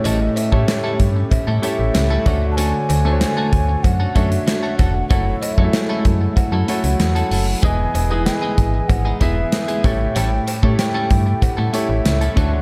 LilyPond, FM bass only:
\new Staff \with { instrumentName = "FM bass" } { \clef bass \time 4/4 \key a \lydian \tempo 4 = 95 a,,8 r16 a,16 r8 g,8 a,16 a,16 r16 a,,16 cis,8 d,8~ | d,8 d,8. r16 d,8 fis,8 fis,8 r8 e,,8 | fis,,8 r16 fis,16 r8 fis,8 fis,16 fis,16 r16 cis,16 e,8 fis,,8 | e,,8 e,,8. r16 gis,,8 gis,,8 e,,8 r8 a,,8 |
a,,8 r16 a,16 r8 g,8 a,16 a,16 r16 a,,16 cis,8 d,8 | }